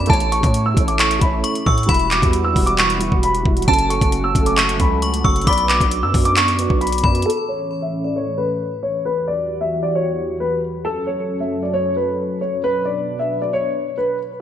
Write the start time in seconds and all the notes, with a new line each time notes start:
Already playing: B3 F#4 D5
0.06 A1 A3 C#4 E4 A5, kick, closed hi-hat
0.12 C#5, closed hi-hat
0.20 closed hi-hat
0.32 C#6, closed hi-hat
0.41 A2 A3 E4, kick, closed hi-hat
0.46 C#5
0.54 closed hi-hat
0.66 E6
0.74 A1 A3 E4, kick, closed hi-hat
0.79 C#5
0.88 D6, closed hi-hat
0.99 C#6, clap, closed hi-hat
1.11 closed hi-hat
1.19 A1 A3 E4 B5, kick, closed hi-hat
1.24 C#5
1.44 C#6, closed hi-hat
1.55 closed hi-hat
1.66 A2 C#6 E6, kick
1.78 closed hi-hat
1.83 G3, closed hi-hat
1.89 E1 E3 G3 B3 E4 F#4 B5, kick, closed hi-hat
1.94 closed hi-hat
1.99 closed hi-hat
2.11 D6, clap, closed hi-hat
2.22 E2, kick, closed hi-hat
2.33 closed hi-hat
2.44 E6
2.53 E1 G3 E4, kick, open hi-hat
2.59 F#4
2.66 D6, closed hi-hat
2.78 C#6, clap, closed hi-hat
2.90 closed hi-hat
2.98 G3 E4, closed hi-hat
3.03 F#4
3.12 E1, kick
3.23 B5, closed hi-hat
3.35 closed hi-hat
3.43 E1 G3 E4, kick
3.48 F#4
3.57 closed hi-hat
3.62 F#3, closed hi-hat
3.68 F#1 A3 C#4 A4 A5, kick, closed hi-hat
3.73 closed hi-hat
3.79 closed hi-hat
3.90 C#6, closed hi-hat
3.99 F#1 F#3 C#4, kick, closed hi-hat
4.04 A4
4.12 closed hi-hat
4.24 E6
4.32 F#1 F#3 C#4, kick, closed hi-hat
4.38 A4
4.46 D6, closed hi-hat
4.57 C#6, clap, closed hi-hat
4.69 closed hi-hat
4.77 C#2 F#3 C#4 B5, kick, closed hi-hat
4.82 A4
5.02 C#6, closed hi-hat
5.14 closed hi-hat
5.24 F#1 C#6 E6, kick
5.36 closed hi-hat
5.41 B3, closed hi-hat
5.47 B1 B3 D4 F#4 D5 B5 D6, kick, closed hi-hat
5.53 closed hi-hat
5.58 closed hi-hat
5.69 D6, clap, closed hi-hat
5.81 B1, kick, closed hi-hat
5.91 closed hi-hat
6.03 F#2 E6
6.12 F#2 B3 F#4, kick, open hi-hat
6.17 D5
6.25 D6, closed hi-hat
6.37 C#6, clap, closed hi-hat
6.48 closed hi-hat
6.56 B3 F#4, closed hi-hat
6.62 D5
6.70 B1, kick
6.81 B5, closed hi-hat
6.87 closed hi-hat
6.92 closed hi-hat
6.98 B3, closed hi-hat
7.04 F#2 F#4 D5 B5, kick
7.15 closed hi-hat
7.22 A2 E3 C#4 A4, closed hi-hat
7.30 closed hi-hat
7.48 C#5
7.82 E5
8.04 D5
8.16 C#5
8.38 B4
8.83 C#5
9.05 E2 E3 F#4 G4 B4
9.28 D5
9.61 E5
9.83 D5
9.95 C#5
10.40 B4
10.84 F#2 F#3 C#4 A4
11.07 C#5
11.40 E5
11.63 D5
11.74 C#5
11.96 B4
12.41 C#5
12.63 B2 D4 B4
12.85 D5
13.19 E5
13.42 D5
13.53 C#5
13.98 B4